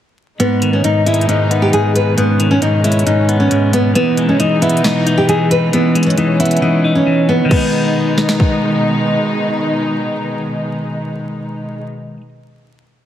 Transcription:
0.40 G#2 B2 D#3 G#3 B3 D#4, closed hi-hat
0.62 D#3, closed hi-hat
0.73 C#4
0.84 G#2 D#4, closed hi-hat
1.06 G#3 E4, closed hi-hat
1.14 closed hi-hat
1.21 closed hi-hat
1.29 G#2 D#4, closed hi-hat
1.51 B3, closed hi-hat
1.62 G4
1.73 G#2 G#4, closed hi-hat
1.95 B4, closed hi-hat
2.17 G#2 B3 C#4, closed hi-hat
2.40 D#3, closed hi-hat
2.51 C#4
2.62 G#2 D#4, closed hi-hat
2.84 G#3 E4, closed hi-hat
2.92 closed hi-hat
2.99 closed hi-hat
3.06 G#2 D#4, closed hi-hat
3.29 B3, closed hi-hat
3.40 C#4
3.51 G#2, closed hi-hat
3.73 B3, closed hi-hat
3.95 E3 B3 D#4, closed hi-hat
4.17 G#3, closed hi-hat
4.29 C#4
4.40 E3 D#4, closed hi-hat
4.62 B3 E4, closed hi-hat
4.69 closed hi-hat
4.77 closed hi-hat
4.84 E3 D#4, snare, closed hi-hat
5.07 D#4, closed hi-hat
5.18 G4
5.29 E3 G#4, closed hi-hat
5.51 B4, closed hi-hat
5.73 E3 B3 C#4, closed hi-hat
5.95 G#3, closed hi-hat
6.03 C#4, closed hi-hat
6.10 closed hi-hat
6.18 E3 D#4, closed hi-hat
6.40 B3 E4, closed hi-hat
6.45 closed hi-hat
6.51 closed hi-hat
6.57 closed hi-hat
6.62 E3 D#4
6.84 D#4
6.95 C#4
7.07 E3
7.29 B3
7.45 D#3 G#3
7.51 B2 D#3 G#3 B3 D#4, kick, crash
7.57 D#4
8.18 snare
8.29 snare
8.40 kick

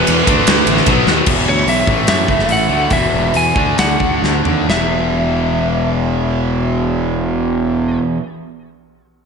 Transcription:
Already playing: E2 B2 E3 B4
0.07 E2, ride
0.26 D2 D3 A3 D4, kick, ride
0.47 D2, snare, ride
0.66 A1, ride
0.77 snare
0.86 B1 B2 F#3, kick, ride
0.90 B3
1.07 D#2, snare
1.26 E1 E2 B2 E3, kick, crash
1.46 D2 C#5
1.67 B1 E5, open hi-hat
1.87 A1 A2 E3, kick
1.92 A3
2.07 F#2 E5, snare, open hi-hat
2.28 F#1, kick
2.39 snare
2.49 A1 F#5, open hi-hat
2.69 D2 A2 E3 A3
2.90 E1 E2 B2 E3 E5, kick, open hi-hat
3.13 E1
3.34 E2 G#5, open hi-hat
3.55 D2 D3 A3 D4, kick
3.78 D2 F#5, snare, open hi-hat
4.00 D2, kick
4.23 D2, snare
4.43 D#2 D3 A3 D4, floor tom
4.67 E1 E2 B2 E3 E5, snare

